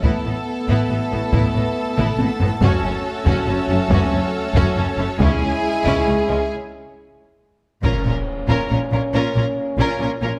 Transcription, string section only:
0.00 2.62 B3 soft
0.00 2.62 E4 soft
0.00 2.59 A4 soft
0.00 5.20 A5 medium
2.63 6.52 C#4 medium
2.63 5.21 F#4 medium
2.63 6.52 C#5 medium
5.20 6.52 E4 medium
5.20 6.52 G#5 medium

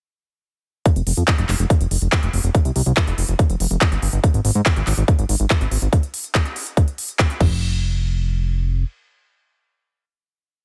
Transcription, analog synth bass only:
0.96 1.02 F1 medium
1.07 1.13 F1 loud
1.17 1.23 F2 medium
1.38 1.44 F1 medium
1.49 1.55 F1 loud
1.59 1.66 F1 medium
1.81 1.87 F1 medium
1.91 1.97 F1 loud
2.02 2.08 F1 medium
2.23 2.29 F1 medium
2.33 2.40 F1 loud
2.44 2.50 F1 medium
2.65 2.71 C2 medium
2.76 2.82 C2 loud
2.86 2.92 C2 medium
3.07 3.13 F1 medium
3.18 3.24 F1 loud
3.29 3.35 F1 medium
3.50 3.56 F1 medium
3.60 3.66 F1 loud
3.71 3.77 F1 medium
3.92 3.98 G1 medium
4.02 4.09 G1 loud
4.13 4.19 G1 loud
4.34 4.40 G#1 medium
4.45 4.51 G#1 loud
4.55 4.61 G#2 medium
4.76 4.82 G#1 medium
4.87 4.93 G#1 loud
4.98 5.04 G#1 medium
5.19 5.25 G#1 medium
5.29 5.35 G#1 loud
5.40 5.46 G#1 medium
5.61 5.67 G#1 medium
5.71 5.78 G#1 medium
5.82 5.88 G#1 medium
7.41 8.84 F1 medium

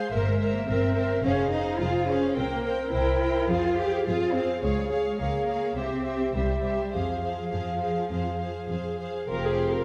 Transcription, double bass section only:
0.12 0.59 G1 medium
0.68 1.15 G1 medium
1.23 1.71 F1 medium
1.80 2.27 F1 medium
2.36 2.84 C2 medium
2.92 3.40 C2 medium
3.49 3.97 F2 medium
4.06 4.53 F2 medium
4.62 5.10 C#2 medium
5.20 5.68 C#2 medium
5.76 6.25 C2 medium
6.34 6.84 C2 medium
6.93 7.43 F2 soft
7.52 8.02 F2 medium
8.11 8.60 F2 medium
8.70 9.19 F2 medium
9.28 9.82 F1 soft

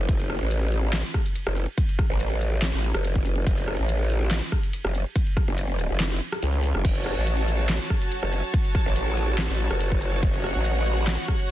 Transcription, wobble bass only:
0.09 0.39 F#1 loud
0.41 1.03 A1 loud
1.47 1.66 F#1 medium
2.10 2.72 A1 loud
2.73 2.93 A1 loud
2.94 3.45 F#1 loud
3.79 4.41 A1 loud
4.85 5.04 F#1 loud
5.48 5.88 F#1 loud
5.90 6.20 F#1 medium
6.42 6.73 C#2 loud
6.75 6.83 F#1 loud
6.85 7.15 F#1 loud
7.17 7.79 A1 loud
8.23 8.42 F#1 loud
8.86 9.48 A1 loud
9.49 9.69 A1 loud
9.71 10.21 F#1 loud
10.55 11.17 A1 loud

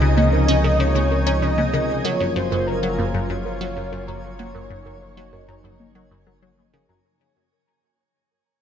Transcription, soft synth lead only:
0.00 0.17 D#5 loud
0.17 0.81 D#5 loud
0.80 1.44 C#5 loud
1.42 2.06 D#5 loud
2.05 2.38 C#5 loud
2.36 2.69 C5 loud
2.68 3.30 A#4 loud
3.30 4.20 C#5 loud
4.24 6.38 C#5 loud

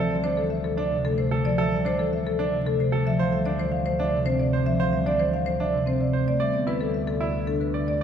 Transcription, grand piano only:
0.00 0.15 A4 medium
0.24 0.41 D4 medium
0.77 0.95 D4 medium
1.31 1.49 A4 medium
1.58 1.75 A4 medium
1.85 2.02 D4 medium
2.39 2.56 D4 medium
2.92 3.09 A4 medium
3.19 3.36 C5 medium
3.46 3.63 D4 medium
4.00 4.17 D4 medium
4.53 4.70 C5 medium
4.80 4.97 C5 medium
5.06 5.23 D4 medium
5.60 5.77 D4 medium
6.13 6.31 C5 medium
6.40 6.57 D5 medium
6.67 6.84 E4 medium
7.21 7.38 E4 medium
7.74 7.91 D5 medium

